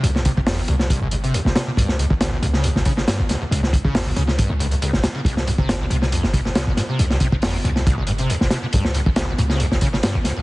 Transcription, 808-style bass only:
X:1
M:4/4
L:1/16
Q:"Swing 16ths" 1/4=138
K:Dblyd
V:1 name="808-style bass" clef=bass
C,,3 G,,,3 C,,3 G,,,3 z G,,, z2 | D,,3 A,,,3 D,,3 A,,,3 z A,,, z2 | D,,3 A,,,3 D,,3 D,,3 z A,,, z2 | C,,3 G,,,3 C,,3 G,,,3 z G,,, z2 |
C,,3 G,,,3 C,,3 G,,,3 z G,,, z2 | D,,3 A,,,3 D,,3 A,,,3 z A,,, z2 |]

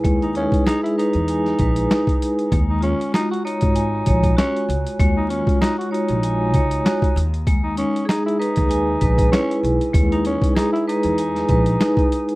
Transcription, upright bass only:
X:1
M:4/4
L:1/16
Q:"Swing 16ths" 1/4=97
K:Ebphr
V:1 name="Upright bass" clef=bass
^D,,3 z4 =E,,3 B,,,2 z4 | E,,3 z4 A,,,3 B,,,2 z2 D,, z | E,,3 z4 B,,,3 D,,2 z2 ^D,,2- | ^D,,3 z4 D,,3 B,,,2 z2 =B,,, z |
^D,,3 z4 =E,,3 B,,,2 z4 |]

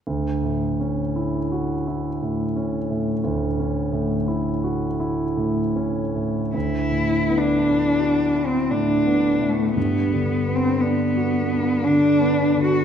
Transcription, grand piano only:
X:1
M:3/4
L:1/8
Q:1/4=57
K:D
V:1 name="Grand piano"
(3D,, A,, C (3E F E (3A,, C A,, | (3D,, C A,, (3E F E (3A,, C A,, | (3D,, A,, B, (3E F E (3A,, B, A,, | (3G,, D, B, (3D F D (3D, B, D, |]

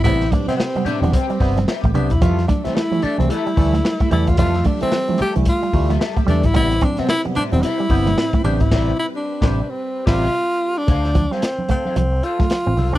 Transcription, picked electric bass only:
X:1
M:4/4
L:1/16
Q:"Swing 16ths" 1/4=111
K:Ddor
V:1 name="Picked electric bass" clef=bass
A,,,2 z4 z E,,, z2 G,,,2 z A,,, C,, E,,, | F,,2 z4 z C,, z2 D,,2 z2 E,, E,, | F,,2 z4 z C,, z2 D,,2 z2 E,, ^G,,, | A,,,2 z4 z E,,, z2 G,,,2 z2 A,,, ^G,,, |
A,,,2 z3 A,,,2 z3 A,,,2 z4 | D,,3 z4 z C,,2 z3 A,,, C,, ^C,, |]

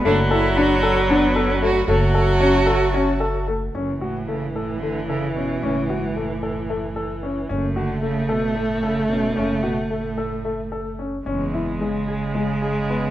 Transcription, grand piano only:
X:1
M:7/8
L:1/8
Q:1/4=112
K:F#m
V:1 name="Grand piano"
A, A D A D A A, | A, A C A C A A, | C F A, A A, A C | C F A, A A, A C |
C F A, A A, A C | C F A, A A, A C | C E G, G G, G B, |]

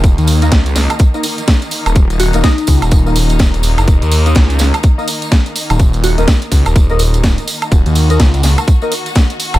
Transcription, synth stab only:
X:1
M:4/4
L:1/16
Q:"Swing 16ths" 1/4=125
K:Ebm
V:1 name="Synth stab"
z3 [B,EBe] z4 z [B,EBe] z6 | z3 [B,EBe] z4 z [B,EBe] z6 | z3 [B,EBe] z4 z [B,EBe] z6 | z3 [B,EBe] z4 z [B,EBe] z6 |
z3 [B,EBe] z4 z [B,EBe] z6 |]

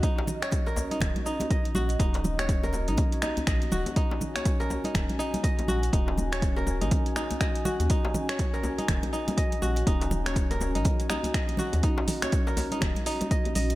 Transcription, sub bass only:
X:1
M:4/4
L:1/16
Q:"Swing 16ths" 1/4=122
K:Ebm
V:1 name="Sub bass" clef=bass
z8 E,,, z4 z B,,,2 | E,,,6- E,,, B,,, z4 B,,, z E,,, z | z8 E,,, z4 z B,,,2 | E,,,6- E,,, B,,, z6 z E,, |
z8 E,,, z4 z B,,,2 | E,,,6- E,,, B,,, z6 z E,, | z8 E,,, z4 z B,,,2 |]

